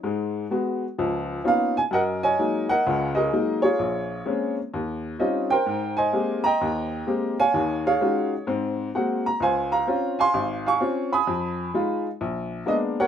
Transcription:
0.03 G#2 G#3
0.51 G#3 B3 F#4
0.98 C#2 F3
1.44 A#3 B3 C#4 D#4 F4 F5
1.77 G#5
1.91 F#2 A#4 D#5 F#5
2.23 C#5 D#5 G#5
2.39 F#3 G#3 A#3 D#4
2.69 A#4 D#5 F#5
2.86 C#2 C#3
3.15 G#4 A#4 D#5
3.33 F#3 G#3 A#3 D#4
3.62 F4 G#4 C#5
3.79 A#1
4.26 G#3 A#3 C4 C#4
4.74 D#2
5.19 G3 C4 C#4 D#4 F4 D#5
5.50 A#4 C5 G5
5.66 G#2
5.97 C5 D#5 G#5
6.13 G#3 A#3 C4 G4
6.44 D#5 G5 A#5
6.61 D#2
7.07 G#3 A#3 C4 G4
7.39 C#5 F5 G#5
7.54 D#2 D#3
7.87 G#4 C#5 F5
8.01 G#3 C#4 D#4 F4 F#4
8.47 G#2 C4
8.95 G#3 A#3 C4 F#4 F#5
9.26 A#5
9.40 C#2 C5 F5 G#5
9.72 F5 A#5
9.87 C4 C#4 F4
10.19 F5 G#5 C6
10.34 G#1
10.66 F5 G#5 C#6
10.80 C4 C#4 F4
11.13 G#5 B5 D#6
11.27 F2
11.74 G#3 D#4 F4
12.21 A#1
12.66 G#3 A#3 B3 D4 D#5
13.00 A#4 C#5 F#5

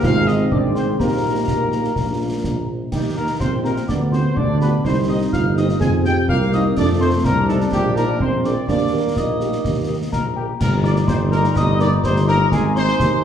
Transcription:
0.03 G#1 G#3 C4 D#4 F4 G#4 F5 F6, concert bass drum, snare
0.28 D#4 D#5 D#6, snare
0.51 G#1 C4 D4 D5 D6, concert bass drum
0.75 C4 C5 C6, snare
0.99 A#1 A#3 D#4 G4 A#4 A#5, concert bass drum, snare
1.48 A#1, concert bass drum, snare
1.72 snare
1.84 snare
1.96 A#1 A#3 D4 F4, concert bass drum, snare
2.44 A#1, concert bass drum, snare
2.91 D#2 G3 D#4 G4 G5, concert bass drum, snare, crash
3.16 A#3 D#4 G4 A#4 A#5
3.40 A#1 C4 C5 C6, concert bass drum, snare
3.64 A#3 D#4 G4 A#4 A#5, snare
3.76 snare
3.88 D2 B3 D4 D5 D6, concert bass drum, snare
4.12 B3 C4 F4 G4 C5 C6, snare
4.36 D2 D4 D5 D6, concert bass drum
4.60 B3 F4 G4 B4 B5, snare
4.84 C2 C4 D#4 C5 C6, concert bass drum, snare
5.08 C4 D#4 G4 D#5 D#6
5.32 G1 F4 F5 F6, concert bass drum, snare
5.56 C4 D#4 G4 D#5 D#6, snare
5.69 snare
5.80 F2 C4 G#4 G#5 G#6, concert bass drum, snare
6.05 C4 D#4 G4 G#4 G5 G6, snare
6.28 C2 A#3 F4 F5 F6, concert bass drum
6.52 C4 D#4 G#4 D#5 D#6, snare
6.77 F2 A3 D4 D5 D6, concert bass drum, snare, crash
7.00 C4 D#4 A4 C5 C6
7.25 C2 A#3 D4 A#4 A#5, concert bass drum, snare
7.48 A3 C4 D#4 A4 A5, snare
7.60 snare
7.72 A#1 G3 G4 G5, concert bass drum, snare
7.96 A#3 D#4 A#4 A#5, snare
8.20 A#1 C4 C5 C6, concert bass drum
8.44 A#3 D4 G#4 A#4 D5 D6, snare
8.68 D#2 A#3 D4 D5 D6, concert bass drum, snare
8.93 A#3 G4 A#4
9.16 A#1 D#4 D#5 D#6, concert bass drum, snare
9.40 A#3 G4 A#4, snare
9.52 snare
9.65 D#2, concert bass drum, snare
9.88 A#3 G4 A#4
10.12 A#1 A#4 A#5, concert bass drum, snare
10.36 A#3 G4 A#4 G5
10.60 G1 G3 D#4 A#4 A#5, concert bass drum, snare, crash
10.84 A#3 D#4 A#4 D5 D6, snare
10.96 snare
11.08 G1 C5 C6, concert bass drum, snare
11.32 A#3 D#4 A#4 A#5, snare
11.44 snare
11.56 G1 D#5 D#6, concert bass drum, snare
11.80 A#3 D#4 A#4 D5 D6, snare
12.04 G1 C5 C6, concert bass drum, snare
12.16 snare
12.28 A#3 D#4 A#4 A#5, snare
12.52 G#1 G#3 D#4 G#4 G#5, concert bass drum, snare
12.76 D#4 G#4 C5 C6, snare
12.88 snare
13.00 D#2, concert bass drum, snare

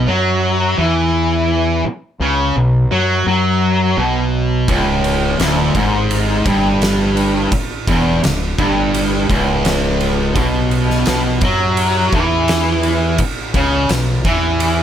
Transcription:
0.07 F#2 F#3
0.78 E2 E3
1.84 muted fingered electric bass stroke, muted distorted electric guitar stroke
2.20 C#2 C#3
2.56 B1 B2
2.91 F#2 F#3
3.26 F#2 F#3
3.97 B1 B2
4.68 C#1 C#2, kick, ride
5.04 ride
5.39 D1 D2, snare, ride
5.75 G#1 G#2, kick, ride
6.11 ride
6.46 G1 G2, kick, ride
6.82 snare, ride
7.17 ride
7.52 muted fingered electric bass stroke, muted distorted electric guitar stroke, kick, ride
7.88 E1 E2, kick, ride
8.24 C#1 C#2, snare, ride
8.58 G1 G2, kick, ride
8.94 ride
9.29 C#1 C#2, kick, ride
9.65 snare, ride
10.01 ride
10.35 B1 B2, kick, ride
10.71 ride
10.90 snare
11.06 B1 B2, snare, ride
11.41 F#2 F#3, kick, ride
11.77 ride
12.12 E2 E3, kick, ride
12.48 snare, ride
12.83 ride
13.18 muted fingered electric bass stroke, muted distorted electric guitar stroke, kick, ride
13.54 C#2 C#3, kick, ride
13.89 B1 B2, snare, ride
14.25 E2 E3, kick, ride
14.60 ride

